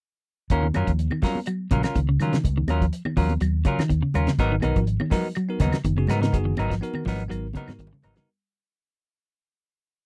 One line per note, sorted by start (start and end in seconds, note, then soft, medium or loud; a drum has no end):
0.50 0.71 D#2 medium
0.50 0.66 C#4 medium
0.50 0.66 F4 medium
0.50 0.67 A#4 medium
0.50 muted clean electric guitar stroke medium
0.50 kick medium
0.50 closed hi-hat medium
0.63 0.83 D#3 medium
0.63 high conga medium
0.74 0.86 F#2 medium
0.74 0.90 F#3 medium
0.74 0.90 C#4 medium
0.74 0.91 F4 medium
0.74 0.91 A#4 medium
0.74 closed hi-hat soft
0.74 high conga medium
0.74 claves medium
0.87 1.08 D#2 medium
0.87 1.07 F3 medium
0.87 kick medium
0.87 closed hi-hat soft
0.99 closed hi-hat medium
1.11 1.21 D#3 medium
1.11 high conga medium
1.11 claves medium
1.22 1.38 F#3 medium
1.22 1.39 C#4 medium
1.22 1.39 F4 medium
1.22 1.39 A#4 medium
1.22 muted clean electric guitar stroke medium
1.22 kick medium
1.22 snare soft
1.22 open hi-hat medium
1.22 low conga medium
1.35 high conga medium
1.46 1.67 F#3 medium
1.46 closed hi-hat medium
1.46 claves medium
1.71 1.82 A#1 medium
1.71 1.91 C#3 medium
1.71 1.85 F#3 medium
1.71 1.84 C#4 medium
1.71 1.84 F4 medium
1.71 1.83 A#4 medium
1.71 kick medium
1.71 closed hi-hat medium
1.71 high conga medium
1.71 low conga medium
1.83 1.99 C#4 soft
1.83 1.99 F4 soft
1.83 1.98 A#4 medium
1.83 muted fingered electric bass stroke soft
1.83 snare medium
1.83 closed hi-hat medium
1.83 claves medium
1.95 2.17 C#2 medium
1.95 2.06 D#3 medium
1.95 kick medium
1.95 closed hi-hat medium
1.95 high conga medium
2.09 2.28 C#3 medium
2.20 2.41 D#3 medium
2.20 2.36 F#3 medium
2.20 2.36 C#4 medium
2.20 2.36 F4 medium
2.20 2.36 A#4 medium
2.20 closed hi-hat medium
2.20 low conga medium
2.20 claves medium
2.32 2.42 C#3 medium
2.32 snare medium
2.32 closed hi-hat soft
2.32 high conga medium
2.44 2.65 C#2 medium
2.44 kick medium
2.44 closed hi-hat medium
2.44 low conga medium
2.57 2.77 D#3 medium
2.57 high conga medium
2.67 2.88 D#2 medium
2.67 2.84 F#3 medium
2.67 2.85 C#4 medium
2.67 2.85 F4 medium
2.67 2.85 A#4 medium
2.67 closed hi-hat soft
2.67 high conga medium
2.67 claves medium
2.81 3.01 F3 medium
2.81 kick medium
2.81 closed hi-hat soft
2.93 closed hi-hat medium
3.05 3.15 D#3 medium
3.05 high conga medium
3.05 claves medium
3.16 3.37 D#2 medium
3.16 3.37 F3 medium
3.16 3.32 F#3 medium
3.16 3.32 C#4 medium
3.16 3.33 F4 medium
3.16 3.33 A#4 medium
3.16 kick medium
3.16 open hi-hat medium
3.16 low conga medium
3.29 closed hi-hat soft
3.29 high conga medium
3.41 3.62 D#2 medium
3.41 3.61 F#3 medium
3.41 closed hi-hat medium
3.41 claves medium
3.65 3.85 C#3 medium
3.65 3.81 F#3 medium
3.65 3.81 C#4 medium
3.65 3.82 F4 medium
3.65 3.82 A#4 medium
3.65 kick medium
3.65 closed hi-hat soft
3.65 high conga medium
3.79 3.89 D#3 medium
3.79 snare medium
3.79 closed hi-hat soft
3.79 claves medium
3.89 4.01 D#2 medium
3.89 4.00 D#3 medium
3.89 kick medium
3.89 closed hi-hat medium
3.89 high conga medium
4.02 4.22 C#3 medium
4.14 4.26 D#2 medium
4.14 4.30 C#4 medium
4.14 4.30 F4 medium
4.14 4.30 A#4 medium
4.14 muted clean electric guitar stroke medium
4.14 closed hi-hat medium
4.14 low conga medium
4.14 claves medium
4.27 4.37 C#3 medium
4.27 snare medium
4.27 closed hi-hat soft
4.27 high conga medium
4.39 4.59 G#1 medium
4.39 4.54 F#3 medium
4.39 4.54 B3 medium
4.39 4.54 D#4 medium
4.39 4.55 A#4 medium
4.39 kick medium
4.39 snare soft
4.39 closed hi-hat medium
4.52 4.71 D#3 medium
4.61 4.74 B1 medium
4.61 4.78 F#3 medium
4.61 4.83 B3 medium
4.61 4.78 B3 medium
4.61 4.83 D#4 medium
4.61 4.79 D#4 medium
4.61 4.83 F#4 medium
4.61 4.84 A#4 medium
4.61 4.79 A#4 medium
4.61 closed hi-hat soft
4.61 high conga medium
4.61 claves medium
4.76 4.97 G#1 loud
4.76 4.96 F3 medium
4.76 kick medium
4.76 closed hi-hat soft
4.87 closed hi-hat medium
5.00 5.10 D#3 medium
5.00 high conga medium
5.00 claves medium
5.11 5.32 F3 medium
5.11 5.27 F#3 medium
5.11 5.27 B3 medium
5.11 5.28 D#4 medium
5.11 5.27 D#4 medium
5.11 5.28 F#4 medium
5.11 5.27 A#4 medium
5.11 5.28 A#4 medium
5.11 kick medium
5.11 snare soft
5.11 open hi-hat medium
5.11 low conga medium
5.35 5.56 F#3 medium
5.35 closed hi-hat medium
5.35 claves medium
5.49 5.69 B3 medium
5.49 5.69 D#4 medium
5.49 5.70 F#4 medium
5.49 5.70 A#4 medium
5.60 5.71 D#2 medium
5.60 5.80 C#3 medium
5.60 5.76 F#3 medium
5.60 5.76 B3 medium
5.60 5.76 D#4 medium
5.60 5.76 A#4 medium
5.60 kick medium
5.60 snare soft
5.60 closed hi-hat medium
5.60 high conga medium
5.60 low conga medium
5.72 muted fingered electric bass stroke soft
5.72 snare medium
5.72 closed hi-hat medium
5.72 claves medium
5.84 6.05 F#1 medium
5.84 5.95 D#3 medium
5.84 kick medium
5.84 closed hi-hat medium
5.84 high conga medium
5.97 6.17 C#3 medium
5.97 6.12 B3 medium
5.97 6.12 D#4 medium
5.97 6.13 F#4 medium
5.97 6.13 G#4 medium
6.07 6.29 G#2 medium
6.07 6.22 F#3 soft
6.07 6.22 B3 medium
6.07 6.21 D#4 medium
6.07 6.21 A#4 medium
6.07 snare soft
6.07 closed hi-hat medium
6.07 low conga medium
6.07 claves medium
6.21 6.31 C#3 medium
6.21 6.37 B3 soft
6.21 6.36 D#4 soft
6.21 6.36 A#4 soft
6.21 snare medium
6.21 closed hi-hat soft
6.21 high conga medium
6.32 6.55 F#1 medium
6.32 6.54 B3 medium
6.32 6.54 D#4 medium
6.32 6.54 F#4 medium
6.32 6.54 G#4 medium
6.32 kick medium
6.32 closed hi-hat medium
6.32 low conga medium
6.45 6.65 D#3 medium
6.57 6.79 G#1 medium
6.57 6.73 F#3 medium
6.57 6.74 B3 medium
6.57 6.74 D#4 medium
6.57 6.74 A#4 medium
6.57 closed hi-hat soft
6.57 high conga medium
6.57 claves medium
6.70 6.90 F3 medium
6.70 kick medium
6.70 snare soft
6.70 closed hi-hat soft
6.81 7.02 B3 medium
6.81 7.03 D#4 medium
6.81 7.03 F#4 medium
6.81 7.03 A#4 loud
6.81 closed hi-hat medium
6.94 7.04 D#3 medium
6.94 high conga medium
6.94 claves medium
7.05 7.27 G#1 medium
7.05 7.26 F3 medium
7.05 7.22 F#3 medium
7.05 7.22 B3 medium
7.05 7.23 D#4 medium
7.05 7.23 A#4 medium
7.05 kick medium
7.05 open hi-hat medium
7.05 low conga medium
7.17 closed hi-hat soft
7.17 high conga medium
7.28 7.52 G#1 medium
7.28 7.50 F#3 medium
7.28 7.45 B3 medium
7.28 7.46 D#4 medium
7.28 7.46 F#4 medium
7.28 7.46 A#4 medium
7.28 closed hi-hat medium
7.28 claves medium
7.53 7.74 C#3 medium
7.53 7.71 F#3 medium
7.53 7.71 B3 medium
7.53 7.71 D#4 medium
7.53 7.71 A#4 medium
7.53 kick medium
7.53 closed hi-hat medium
7.53 high conga medium
7.62 high conga medium
7.67 7.78 G#2 medium
7.67 7.88 B3 medium
7.67 7.88 D#4 medium
7.67 7.88 F#4 medium
7.67 7.88 A#4 medium
7.67 snare medium
7.67 closed hi-hat soft
7.67 high conga loud
7.67 claves medium
7.79 7.90 G#1 medium
7.79 7.90 D#3 medium
7.79 kick medium
7.79 closed hi-hat medium
7.79 low conga medium
7.87 low conga medium
7.93 8.12 C#3 medium
7.93 low conga medium
8.02 8.15 G#1 medium
8.02 8.17 F#3 medium
8.02 8.16 B3 medium
8.02 8.16 D#4 medium
8.02 8.15 A#4 medium
8.02 closed hi-hat medium
8.02 low conga medium
8.02 claves medium
8.15 8.26 C#3 medium
8.15 8.27 B3 medium
8.15 8.29 B3 soft
8.15 8.28 D#4 medium
8.15 8.29 D#4 medium
8.15 8.28 F#4 medium
8.15 8.28 A#4 medium
8.15 snare medium
8.15 closed hi-hat medium
8.15 low conga medium